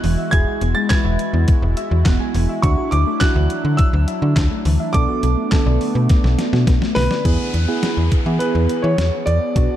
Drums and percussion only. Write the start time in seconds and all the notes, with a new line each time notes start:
0.04 open hi-hat
0.33 kick, closed hi-hat
0.61 closed hi-hat
0.90 kick, snare, clap, closed hi-hat
1.19 closed hi-hat
1.48 kick, closed hi-hat
1.77 closed hi-hat
2.06 kick, snare, clap, closed hi-hat
2.34 open hi-hat
2.63 kick, closed hi-hat
2.92 closed hi-hat
3.21 kick, snare, clap, closed hi-hat
3.50 closed hi-hat
3.79 kick, closed hi-hat
4.08 closed hi-hat
4.36 kick, snare, clap, closed hi-hat
4.65 open hi-hat
4.94 kick, closed hi-hat
5.23 closed hi-hat
5.52 kick, snare, clap, closed hi-hat
5.81 open hi-hat
6.09 kick, snare, closed hi-hat
6.24 snare
6.38 snare, closed hi-hat
6.53 snare
6.67 kick, snare, closed hi-hat
6.82 snare
6.96 snare, open hi-hat
7.11 snare
7.25 kick, closed hi-hat
7.54 closed hi-hat
7.83 snare, closed hi-hat
8.12 kick, closed hi-hat
8.40 closed hi-hat
8.69 closed hi-hat
8.98 snare, closed hi-hat
9.27 closed hi-hat
9.56 kick, closed hi-hat